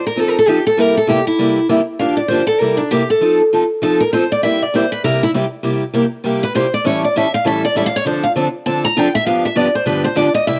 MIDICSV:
0, 0, Header, 1, 3, 480
1, 0, Start_track
1, 0, Tempo, 303030
1, 1237, Time_signature, 4, 2, 24, 8
1, 16782, End_track
2, 0, Start_track
2, 0, Title_t, "Steel-string acoustic guitar"
2, 0, Program_c, 0, 25
2, 102, Note_on_c, 0, 70, 83
2, 310, Note_off_c, 0, 70, 0
2, 310, Note_on_c, 0, 69, 75
2, 444, Note_off_c, 0, 69, 0
2, 444, Note_on_c, 0, 70, 80
2, 596, Note_off_c, 0, 70, 0
2, 610, Note_on_c, 0, 69, 82
2, 761, Note_off_c, 0, 69, 0
2, 761, Note_on_c, 0, 67, 69
2, 1034, Note_off_c, 0, 67, 0
2, 1054, Note_on_c, 0, 69, 97
2, 1260, Note_off_c, 0, 69, 0
2, 1260, Note_on_c, 0, 70, 81
2, 1524, Note_off_c, 0, 70, 0
2, 1542, Note_on_c, 0, 69, 73
2, 1722, Note_off_c, 0, 69, 0
2, 1734, Note_on_c, 0, 67, 71
2, 2001, Note_off_c, 0, 67, 0
2, 2009, Note_on_c, 0, 64, 75
2, 2635, Note_off_c, 0, 64, 0
2, 3157, Note_on_c, 0, 77, 79
2, 3427, Note_off_c, 0, 77, 0
2, 3434, Note_on_c, 0, 74, 76
2, 3614, Note_on_c, 0, 72, 75
2, 3629, Note_off_c, 0, 74, 0
2, 3901, Note_off_c, 0, 72, 0
2, 3907, Note_on_c, 0, 69, 93
2, 4108, Note_off_c, 0, 69, 0
2, 4108, Note_on_c, 0, 70, 91
2, 4386, Note_on_c, 0, 62, 68
2, 4389, Note_off_c, 0, 70, 0
2, 4585, Note_off_c, 0, 62, 0
2, 4607, Note_on_c, 0, 67, 78
2, 4879, Note_off_c, 0, 67, 0
2, 4911, Note_on_c, 0, 69, 80
2, 5345, Note_off_c, 0, 69, 0
2, 6064, Note_on_c, 0, 69, 79
2, 6328, Note_off_c, 0, 69, 0
2, 6343, Note_on_c, 0, 70, 92
2, 6525, Note_off_c, 0, 70, 0
2, 6539, Note_on_c, 0, 72, 83
2, 6806, Note_off_c, 0, 72, 0
2, 6842, Note_on_c, 0, 74, 87
2, 7013, Note_off_c, 0, 74, 0
2, 7019, Note_on_c, 0, 76, 86
2, 7327, Note_off_c, 0, 76, 0
2, 7327, Note_on_c, 0, 74, 73
2, 7498, Note_off_c, 0, 74, 0
2, 7533, Note_on_c, 0, 72, 71
2, 7783, Note_off_c, 0, 72, 0
2, 7793, Note_on_c, 0, 71, 89
2, 7971, Note_off_c, 0, 71, 0
2, 7988, Note_on_c, 0, 70, 77
2, 8251, Note_off_c, 0, 70, 0
2, 8286, Note_on_c, 0, 64, 96
2, 8393, Note_off_c, 0, 64, 0
2, 10189, Note_on_c, 0, 71, 100
2, 10369, Note_off_c, 0, 71, 0
2, 10381, Note_on_c, 0, 72, 78
2, 10648, Note_off_c, 0, 72, 0
2, 10674, Note_on_c, 0, 74, 96
2, 10852, Note_off_c, 0, 74, 0
2, 10876, Note_on_c, 0, 73, 73
2, 11135, Note_off_c, 0, 73, 0
2, 11159, Note_on_c, 0, 74, 73
2, 11334, Note_off_c, 0, 74, 0
2, 11364, Note_on_c, 0, 76, 76
2, 11619, Note_off_c, 0, 76, 0
2, 11630, Note_on_c, 0, 77, 105
2, 11809, Note_off_c, 0, 77, 0
2, 11832, Note_on_c, 0, 76, 81
2, 12093, Note_off_c, 0, 76, 0
2, 12112, Note_on_c, 0, 74, 106
2, 12291, Note_off_c, 0, 74, 0
2, 12311, Note_on_c, 0, 76, 78
2, 12447, Note_off_c, 0, 76, 0
2, 12453, Note_on_c, 0, 77, 98
2, 12603, Note_off_c, 0, 77, 0
2, 12610, Note_on_c, 0, 73, 92
2, 12762, Note_off_c, 0, 73, 0
2, 12778, Note_on_c, 0, 72, 70
2, 13044, Note_on_c, 0, 77, 82
2, 13046, Note_off_c, 0, 72, 0
2, 13162, Note_off_c, 0, 77, 0
2, 13716, Note_on_c, 0, 81, 90
2, 13994, Note_off_c, 0, 81, 0
2, 14011, Note_on_c, 0, 82, 115
2, 14239, Note_off_c, 0, 82, 0
2, 14239, Note_on_c, 0, 79, 82
2, 14486, Note_off_c, 0, 79, 0
2, 14492, Note_on_c, 0, 76, 106
2, 14669, Note_off_c, 0, 76, 0
2, 14675, Note_on_c, 0, 77, 82
2, 14952, Note_off_c, 0, 77, 0
2, 14971, Note_on_c, 0, 76, 85
2, 15154, Note_off_c, 0, 76, 0
2, 15154, Note_on_c, 0, 74, 84
2, 15432, Note_off_c, 0, 74, 0
2, 15447, Note_on_c, 0, 72, 84
2, 15623, Note_off_c, 0, 72, 0
2, 15629, Note_on_c, 0, 71, 72
2, 15901, Note_off_c, 0, 71, 0
2, 15907, Note_on_c, 0, 72, 93
2, 16105, Note_off_c, 0, 72, 0
2, 16107, Note_on_c, 0, 74, 96
2, 16381, Note_off_c, 0, 74, 0
2, 16387, Note_on_c, 0, 75, 93
2, 16581, Note_off_c, 0, 75, 0
2, 16588, Note_on_c, 0, 76, 83
2, 16782, Note_off_c, 0, 76, 0
2, 16782, End_track
3, 0, Start_track
3, 0, Title_t, "Steel-string acoustic guitar"
3, 0, Program_c, 1, 25
3, 254, Note_on_c, 1, 53, 58
3, 269, Note_on_c, 1, 60, 58
3, 270, Note_on_c, 1, 63, 73
3, 276, Note_on_c, 1, 69, 72
3, 574, Note_off_c, 1, 53, 0
3, 581, Note_off_c, 1, 60, 0
3, 582, Note_off_c, 1, 63, 0
3, 585, Note_off_c, 1, 69, 0
3, 748, Note_on_c, 1, 60, 86
3, 750, Note_on_c, 1, 53, 85
3, 768, Note_on_c, 1, 69, 83
3, 769, Note_on_c, 1, 63, 90
3, 922, Note_off_c, 1, 60, 0
3, 923, Note_off_c, 1, 53, 0
3, 932, Note_off_c, 1, 69, 0
3, 933, Note_off_c, 1, 63, 0
3, 1220, Note_on_c, 1, 48, 72
3, 1231, Note_on_c, 1, 55, 64
3, 1235, Note_on_c, 1, 58, 71
3, 1239, Note_on_c, 1, 64, 73
3, 1242, Note_on_c, 1, 67, 75
3, 1538, Note_off_c, 1, 48, 0
3, 1543, Note_off_c, 1, 55, 0
3, 1545, Note_off_c, 1, 58, 0
3, 1547, Note_off_c, 1, 64, 0
3, 1548, Note_off_c, 1, 67, 0
3, 1696, Note_on_c, 1, 48, 82
3, 1707, Note_on_c, 1, 55, 84
3, 1710, Note_on_c, 1, 64, 89
3, 1712, Note_on_c, 1, 58, 78
3, 1720, Note_on_c, 1, 67, 92
3, 1876, Note_off_c, 1, 48, 0
3, 1882, Note_off_c, 1, 55, 0
3, 1883, Note_off_c, 1, 64, 0
3, 1884, Note_off_c, 1, 58, 0
3, 1888, Note_off_c, 1, 67, 0
3, 2197, Note_on_c, 1, 48, 74
3, 2202, Note_on_c, 1, 55, 69
3, 2205, Note_on_c, 1, 58, 68
3, 2213, Note_on_c, 1, 67, 76
3, 2216, Note_on_c, 1, 64, 75
3, 2506, Note_off_c, 1, 48, 0
3, 2509, Note_off_c, 1, 55, 0
3, 2510, Note_off_c, 1, 58, 0
3, 2514, Note_off_c, 1, 67, 0
3, 2516, Note_off_c, 1, 64, 0
3, 2680, Note_on_c, 1, 55, 79
3, 2680, Note_on_c, 1, 58, 92
3, 2684, Note_on_c, 1, 48, 84
3, 2693, Note_on_c, 1, 64, 92
3, 2697, Note_on_c, 1, 67, 85
3, 2848, Note_off_c, 1, 58, 0
3, 2849, Note_off_c, 1, 55, 0
3, 2851, Note_off_c, 1, 48, 0
3, 2855, Note_off_c, 1, 64, 0
3, 2857, Note_off_c, 1, 67, 0
3, 3170, Note_on_c, 1, 43, 66
3, 3170, Note_on_c, 1, 58, 67
3, 3174, Note_on_c, 1, 62, 68
3, 3175, Note_on_c, 1, 50, 60
3, 3178, Note_on_c, 1, 67, 64
3, 3181, Note_on_c, 1, 53, 59
3, 3473, Note_off_c, 1, 43, 0
3, 3473, Note_off_c, 1, 58, 0
3, 3475, Note_off_c, 1, 62, 0
3, 3476, Note_off_c, 1, 50, 0
3, 3477, Note_off_c, 1, 67, 0
3, 3478, Note_off_c, 1, 53, 0
3, 3644, Note_on_c, 1, 43, 76
3, 3654, Note_on_c, 1, 58, 81
3, 3662, Note_on_c, 1, 50, 84
3, 3663, Note_on_c, 1, 53, 77
3, 3667, Note_on_c, 1, 62, 85
3, 3672, Note_on_c, 1, 67, 91
3, 3811, Note_off_c, 1, 43, 0
3, 3816, Note_off_c, 1, 58, 0
3, 3820, Note_off_c, 1, 50, 0
3, 3821, Note_off_c, 1, 53, 0
3, 3823, Note_off_c, 1, 62, 0
3, 3825, Note_off_c, 1, 67, 0
3, 4128, Note_on_c, 1, 48, 62
3, 4140, Note_on_c, 1, 58, 67
3, 4143, Note_on_c, 1, 55, 70
3, 4147, Note_on_c, 1, 64, 74
3, 4150, Note_on_c, 1, 67, 67
3, 4433, Note_off_c, 1, 48, 0
3, 4439, Note_off_c, 1, 58, 0
3, 4440, Note_off_c, 1, 55, 0
3, 4442, Note_off_c, 1, 64, 0
3, 4444, Note_off_c, 1, 67, 0
3, 4621, Note_on_c, 1, 48, 82
3, 4626, Note_on_c, 1, 58, 87
3, 4629, Note_on_c, 1, 55, 73
3, 4632, Note_on_c, 1, 67, 92
3, 4641, Note_on_c, 1, 64, 81
3, 4780, Note_off_c, 1, 48, 0
3, 4782, Note_off_c, 1, 58, 0
3, 4784, Note_off_c, 1, 55, 0
3, 4786, Note_off_c, 1, 67, 0
3, 4790, Note_off_c, 1, 64, 0
3, 5081, Note_on_c, 1, 53, 61
3, 5092, Note_on_c, 1, 60, 66
3, 5102, Note_on_c, 1, 63, 71
3, 5111, Note_on_c, 1, 69, 82
3, 5390, Note_off_c, 1, 53, 0
3, 5395, Note_off_c, 1, 60, 0
3, 5400, Note_off_c, 1, 63, 0
3, 5405, Note_off_c, 1, 69, 0
3, 5589, Note_on_c, 1, 53, 79
3, 5598, Note_on_c, 1, 60, 72
3, 5598, Note_on_c, 1, 63, 76
3, 5610, Note_on_c, 1, 69, 94
3, 5745, Note_off_c, 1, 53, 0
3, 5749, Note_off_c, 1, 60, 0
3, 5749, Note_off_c, 1, 63, 0
3, 5755, Note_off_c, 1, 69, 0
3, 6049, Note_on_c, 1, 53, 68
3, 6063, Note_on_c, 1, 60, 65
3, 6065, Note_on_c, 1, 63, 71
3, 6076, Note_on_c, 1, 69, 75
3, 6354, Note_off_c, 1, 53, 0
3, 6361, Note_off_c, 1, 60, 0
3, 6362, Note_off_c, 1, 63, 0
3, 6368, Note_off_c, 1, 69, 0
3, 6549, Note_on_c, 1, 53, 84
3, 6553, Note_on_c, 1, 63, 79
3, 6555, Note_on_c, 1, 60, 83
3, 6563, Note_on_c, 1, 69, 89
3, 6705, Note_off_c, 1, 53, 0
3, 6707, Note_off_c, 1, 63, 0
3, 6708, Note_off_c, 1, 60, 0
3, 6712, Note_off_c, 1, 69, 0
3, 7032, Note_on_c, 1, 48, 68
3, 7035, Note_on_c, 1, 55, 67
3, 7035, Note_on_c, 1, 58, 62
3, 7048, Note_on_c, 1, 67, 74
3, 7052, Note_on_c, 1, 64, 77
3, 7326, Note_off_c, 1, 48, 0
3, 7327, Note_off_c, 1, 55, 0
3, 7327, Note_off_c, 1, 58, 0
3, 7334, Note_off_c, 1, 67, 0
3, 7336, Note_off_c, 1, 64, 0
3, 7504, Note_on_c, 1, 48, 74
3, 7514, Note_on_c, 1, 55, 76
3, 7516, Note_on_c, 1, 58, 82
3, 7531, Note_on_c, 1, 67, 89
3, 7536, Note_on_c, 1, 64, 85
3, 7663, Note_off_c, 1, 48, 0
3, 7668, Note_off_c, 1, 55, 0
3, 7669, Note_off_c, 1, 58, 0
3, 7676, Note_off_c, 1, 67, 0
3, 7679, Note_off_c, 1, 64, 0
3, 7982, Note_on_c, 1, 58, 70
3, 7984, Note_on_c, 1, 48, 65
3, 7987, Note_on_c, 1, 67, 68
3, 7988, Note_on_c, 1, 55, 73
3, 7989, Note_on_c, 1, 64, 76
3, 8281, Note_off_c, 1, 58, 0
3, 8282, Note_off_c, 1, 48, 0
3, 8284, Note_off_c, 1, 55, 0
3, 8284, Note_off_c, 1, 67, 0
3, 8285, Note_off_c, 1, 64, 0
3, 8462, Note_on_c, 1, 55, 82
3, 8467, Note_on_c, 1, 48, 80
3, 8473, Note_on_c, 1, 58, 92
3, 8473, Note_on_c, 1, 64, 89
3, 8487, Note_on_c, 1, 67, 101
3, 8622, Note_off_c, 1, 55, 0
3, 8625, Note_off_c, 1, 48, 0
3, 8627, Note_off_c, 1, 58, 0
3, 8627, Note_off_c, 1, 64, 0
3, 8634, Note_off_c, 1, 67, 0
3, 8920, Note_on_c, 1, 48, 69
3, 8921, Note_on_c, 1, 55, 67
3, 8928, Note_on_c, 1, 58, 73
3, 8936, Note_on_c, 1, 64, 72
3, 8944, Note_on_c, 1, 67, 72
3, 9230, Note_off_c, 1, 48, 0
3, 9231, Note_off_c, 1, 55, 0
3, 9235, Note_off_c, 1, 58, 0
3, 9238, Note_off_c, 1, 64, 0
3, 9242, Note_off_c, 1, 67, 0
3, 9403, Note_on_c, 1, 48, 75
3, 9404, Note_on_c, 1, 55, 71
3, 9413, Note_on_c, 1, 64, 86
3, 9417, Note_on_c, 1, 67, 90
3, 9418, Note_on_c, 1, 58, 87
3, 9572, Note_off_c, 1, 48, 0
3, 9573, Note_off_c, 1, 55, 0
3, 9578, Note_off_c, 1, 64, 0
3, 9579, Note_off_c, 1, 67, 0
3, 9580, Note_off_c, 1, 58, 0
3, 9883, Note_on_c, 1, 48, 74
3, 9888, Note_on_c, 1, 55, 68
3, 9902, Note_on_c, 1, 58, 67
3, 9915, Note_on_c, 1, 64, 71
3, 9917, Note_on_c, 1, 67, 72
3, 10192, Note_off_c, 1, 48, 0
3, 10195, Note_off_c, 1, 55, 0
3, 10201, Note_off_c, 1, 58, 0
3, 10208, Note_off_c, 1, 64, 0
3, 10209, Note_off_c, 1, 67, 0
3, 10371, Note_on_c, 1, 48, 86
3, 10383, Note_on_c, 1, 55, 93
3, 10385, Note_on_c, 1, 58, 82
3, 10385, Note_on_c, 1, 64, 84
3, 10399, Note_on_c, 1, 67, 94
3, 10536, Note_off_c, 1, 48, 0
3, 10542, Note_off_c, 1, 55, 0
3, 10543, Note_off_c, 1, 58, 0
3, 10544, Note_off_c, 1, 64, 0
3, 10550, Note_off_c, 1, 67, 0
3, 10841, Note_on_c, 1, 45, 66
3, 10844, Note_on_c, 1, 52, 67
3, 10851, Note_on_c, 1, 55, 70
3, 10852, Note_on_c, 1, 61, 78
3, 10855, Note_on_c, 1, 64, 70
3, 10863, Note_on_c, 1, 69, 68
3, 11151, Note_off_c, 1, 45, 0
3, 11152, Note_off_c, 1, 52, 0
3, 11156, Note_off_c, 1, 55, 0
3, 11156, Note_off_c, 1, 61, 0
3, 11158, Note_off_c, 1, 64, 0
3, 11162, Note_off_c, 1, 69, 0
3, 11338, Note_on_c, 1, 52, 77
3, 11345, Note_on_c, 1, 45, 73
3, 11347, Note_on_c, 1, 61, 90
3, 11354, Note_on_c, 1, 55, 83
3, 11355, Note_on_c, 1, 64, 77
3, 11365, Note_on_c, 1, 69, 92
3, 11500, Note_off_c, 1, 52, 0
3, 11503, Note_off_c, 1, 45, 0
3, 11504, Note_off_c, 1, 61, 0
3, 11508, Note_off_c, 1, 55, 0
3, 11509, Note_off_c, 1, 64, 0
3, 11513, Note_off_c, 1, 69, 0
3, 11796, Note_on_c, 1, 45, 59
3, 11799, Note_on_c, 1, 55, 61
3, 11801, Note_on_c, 1, 52, 74
3, 11809, Note_on_c, 1, 61, 62
3, 11811, Note_on_c, 1, 64, 74
3, 11814, Note_on_c, 1, 69, 79
3, 12108, Note_off_c, 1, 45, 0
3, 12109, Note_off_c, 1, 55, 0
3, 12111, Note_off_c, 1, 52, 0
3, 12115, Note_off_c, 1, 61, 0
3, 12116, Note_off_c, 1, 64, 0
3, 12117, Note_off_c, 1, 69, 0
3, 12279, Note_on_c, 1, 45, 84
3, 12295, Note_on_c, 1, 52, 84
3, 12295, Note_on_c, 1, 64, 93
3, 12297, Note_on_c, 1, 55, 82
3, 12302, Note_on_c, 1, 61, 84
3, 12305, Note_on_c, 1, 69, 88
3, 12450, Note_off_c, 1, 45, 0
3, 12458, Note_off_c, 1, 52, 0
3, 12458, Note_off_c, 1, 64, 0
3, 12459, Note_off_c, 1, 55, 0
3, 12462, Note_off_c, 1, 61, 0
3, 12463, Note_off_c, 1, 69, 0
3, 12750, Note_on_c, 1, 50, 63
3, 12762, Note_on_c, 1, 53, 73
3, 12766, Note_on_c, 1, 62, 76
3, 12775, Note_on_c, 1, 60, 58
3, 12776, Note_on_c, 1, 69, 70
3, 13065, Note_off_c, 1, 50, 0
3, 13071, Note_off_c, 1, 53, 0
3, 13073, Note_off_c, 1, 62, 0
3, 13077, Note_off_c, 1, 60, 0
3, 13078, Note_off_c, 1, 69, 0
3, 13238, Note_on_c, 1, 50, 81
3, 13242, Note_on_c, 1, 53, 81
3, 13254, Note_on_c, 1, 60, 84
3, 13257, Note_on_c, 1, 69, 87
3, 13260, Note_on_c, 1, 62, 89
3, 13409, Note_off_c, 1, 50, 0
3, 13411, Note_off_c, 1, 53, 0
3, 13417, Note_off_c, 1, 60, 0
3, 13419, Note_off_c, 1, 69, 0
3, 13420, Note_off_c, 1, 62, 0
3, 13723, Note_on_c, 1, 50, 66
3, 13723, Note_on_c, 1, 53, 72
3, 13729, Note_on_c, 1, 60, 67
3, 13730, Note_on_c, 1, 62, 68
3, 13748, Note_on_c, 1, 69, 76
3, 14030, Note_off_c, 1, 50, 0
3, 14031, Note_off_c, 1, 53, 0
3, 14034, Note_off_c, 1, 60, 0
3, 14034, Note_off_c, 1, 62, 0
3, 14043, Note_off_c, 1, 69, 0
3, 14202, Note_on_c, 1, 50, 92
3, 14203, Note_on_c, 1, 60, 99
3, 14207, Note_on_c, 1, 53, 88
3, 14214, Note_on_c, 1, 69, 92
3, 14215, Note_on_c, 1, 62, 99
3, 14371, Note_off_c, 1, 50, 0
3, 14371, Note_off_c, 1, 60, 0
3, 14373, Note_off_c, 1, 53, 0
3, 14377, Note_off_c, 1, 62, 0
3, 14377, Note_off_c, 1, 69, 0
3, 14670, Note_on_c, 1, 53, 70
3, 14673, Note_on_c, 1, 43, 65
3, 14675, Note_on_c, 1, 50, 60
3, 14683, Note_on_c, 1, 59, 66
3, 14689, Note_on_c, 1, 67, 77
3, 14692, Note_on_c, 1, 62, 72
3, 14984, Note_off_c, 1, 53, 0
3, 14985, Note_off_c, 1, 43, 0
3, 14986, Note_off_c, 1, 50, 0
3, 14990, Note_off_c, 1, 59, 0
3, 14993, Note_off_c, 1, 67, 0
3, 14995, Note_off_c, 1, 62, 0
3, 15138, Note_on_c, 1, 50, 80
3, 15139, Note_on_c, 1, 59, 87
3, 15143, Note_on_c, 1, 43, 82
3, 15143, Note_on_c, 1, 53, 77
3, 15144, Note_on_c, 1, 62, 87
3, 15152, Note_on_c, 1, 67, 91
3, 15318, Note_off_c, 1, 50, 0
3, 15319, Note_off_c, 1, 59, 0
3, 15321, Note_off_c, 1, 43, 0
3, 15321, Note_off_c, 1, 53, 0
3, 15321, Note_off_c, 1, 62, 0
3, 15326, Note_off_c, 1, 67, 0
3, 15612, Note_on_c, 1, 43, 75
3, 15616, Note_on_c, 1, 62, 70
3, 15618, Note_on_c, 1, 50, 64
3, 15618, Note_on_c, 1, 53, 66
3, 15618, Note_on_c, 1, 59, 68
3, 15620, Note_on_c, 1, 67, 75
3, 15934, Note_off_c, 1, 43, 0
3, 15936, Note_off_c, 1, 62, 0
3, 15937, Note_off_c, 1, 50, 0
3, 15937, Note_off_c, 1, 53, 0
3, 15937, Note_off_c, 1, 59, 0
3, 15938, Note_off_c, 1, 67, 0
3, 16084, Note_on_c, 1, 43, 93
3, 16086, Note_on_c, 1, 59, 83
3, 16088, Note_on_c, 1, 53, 87
3, 16090, Note_on_c, 1, 50, 80
3, 16096, Note_on_c, 1, 62, 88
3, 16099, Note_on_c, 1, 67, 97
3, 16271, Note_off_c, 1, 43, 0
3, 16272, Note_off_c, 1, 59, 0
3, 16273, Note_off_c, 1, 53, 0
3, 16274, Note_off_c, 1, 50, 0
3, 16277, Note_off_c, 1, 62, 0
3, 16278, Note_off_c, 1, 67, 0
3, 16587, Note_on_c, 1, 48, 61
3, 16587, Note_on_c, 1, 55, 79
3, 16590, Note_on_c, 1, 58, 64
3, 16594, Note_on_c, 1, 64, 72
3, 16596, Note_on_c, 1, 67, 65
3, 16782, Note_off_c, 1, 48, 0
3, 16782, Note_off_c, 1, 55, 0
3, 16782, Note_off_c, 1, 58, 0
3, 16782, Note_off_c, 1, 64, 0
3, 16782, Note_off_c, 1, 67, 0
3, 16782, End_track
0, 0, End_of_file